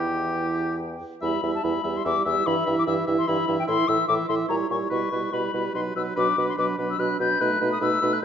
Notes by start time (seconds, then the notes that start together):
Already playing: E2 E3 E4 G4 G5
1.21 E2 G3 E4 E5 B5
1.42 E2 G3 E4 E5
1.55 A5
1.62 E2 G3 E4 E5 B5
1.83 E2 G3 E4 E5
1.96 C6
2.04 E2 G3 E4 E5 D6
2.25 E2 G3 E4 E5 E6
2.46 G2 E3 E4 E5 B5
2.66 G2 E3 E4 E5
2.78 D6
2.86 G2 E3 E4 E5 E6
3.07 G2 E3 E4 E5
3.18 C6
3.27 G2 E3 E4 E5 B5
3.47 G2 E3 E4 E5
3.59 G5
3.67 A2 E3 E4 E5 C6
3.87 A2 E3 E4 E5 E6
4.07 A2 E3 E4 E5 D6
4.28 A2 E3 E4 E5 C6
4.48 A#2 G3 E4 C#5 A#5
4.69 A#2 G3 E4 C#5 C#6
4.90 B2 G3 E4 B4 C#6
5.11 B2 G3 E4 B4
5.32 B2 G3 E4 B4 B5
5.53 B2 G3 E4 B4
5.74 B2 F#3 D#4 B4 C6
5.95 B2 F#3 D#4 B4 E6
6.16 B2 F#3 D4 B4 D6
6.37 B2 F#3 D4 B4
6.49 C6
6.57 B2 F#3 D4 B4 D6
6.78 B2 F#3 D4 B4
6.90 E6
6.98 B2 F#3 D4 B4 F#6
7.19 B2 F#3 D4 B4 G6
7.40 B2 A3 D#4 B4 F#6
7.60 B2 A3 D#4 B4
7.72 D#6
7.81 B2 A3 D#4 B4 E6
8.01 B2 A3 D#4 B4
8.13 F#6